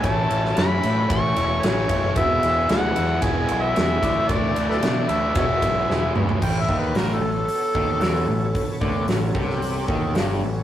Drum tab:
CC |----------------|----------------|----------------|x---------------|
RD |x-x-x-x-x-x-x-x-|x-x-x-x-x-x-x-x-|x-x-x-x-x-x-----|----------------|
HH |----------------|----------------|----------------|----o---o---o---|
SD |---oo-------o---|----o-------o---|---oo-------o---|----o-------o---|
T2 |----------------|----------------|--------------o-|----------------|
FT |----------------|----------------|---------------o|----------------|
BD |o-------o-----o-|o-------o-----o-|o-------o-o-----|o-o-------o-----|

CC |----------------|
RD |----------------|
HH |o---o---o---o---|
SD |----o--o----o---|
T2 |----------------|
FT |----------------|
BD |o-o---o---o-----|